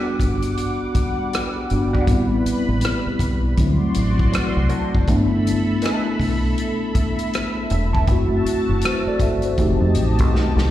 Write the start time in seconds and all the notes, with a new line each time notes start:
Already playing: G3 B3 D4 F#4 F#5 D6
0.20 G1, kick, closed hi-hat
0.42 closed hi-hat
0.57 closed hi-hat
0.95 kick, closed hi-hat
1.33 cross-stick, closed hi-hat
1.70 G1 G3 B3 D4 F#4, closed hi-hat
1.93 G4 D5 F#5, kick
2.07 A1 G3 B3 C4 E4 B4 B5, kick, closed hi-hat
2.46 muted fingered electric bass stroke, closed hi-hat
2.68 A1
2.81 cross-stick, closed hi-hat
3.07 muted fingered electric bass stroke
3.19 B1, kick, closed hi-hat
3.57 D2 F#3 A3 C4 E4 F#4 D5 C6, kick, closed hi-hat
3.82 muted fingered electric bass stroke
3.94 A1, closed hi-hat
4.19 kick
4.32 muted clean electric guitar stroke, muted fingered electric bass stroke, cross-stick, closed hi-hat
4.57 C2
4.69 C4 F#4 A4, closed hi-hat
4.95 F#1, kick
5.07 G1 A3 B3 D4 A4 E5 B5, kick, closed hi-hat
5.11 E4
5.47 closed hi-hat
5.82 B3 E4 A4, cross-stick, closed hi-hat
6.20 B1, kick, open hi-hat
6.58 closed hi-hat
6.95 kick, closed hi-hat
7.19 closed hi-hat
7.33 cross-stick, closed hi-hat
7.70 E1, closed hi-hat
7.93 B3 E4 A4, kick
8.07 F#1 A3 C4 E4 F#4 A5, kick, closed hi-hat
8.12 F#4
8.46 muted fingered electric bass stroke, closed hi-hat
8.69 F#1
8.81 F#4 C5, cross-stick, closed hi-hat
9.07 A4 D5, muted fingered electric bass stroke
9.20 G1 A4 E5, kick, closed hi-hat
9.42 F#4 C5, closed hi-hat
9.58 F1 A3 C4 D#4 G4 D#5 A5, kick, closed hi-hat
9.81 F2
9.95 A1, closed hi-hat
10.19 B1, kick, closed hi-hat
10.34 muted clean electric guitar stroke, snare
10.56 C2, snare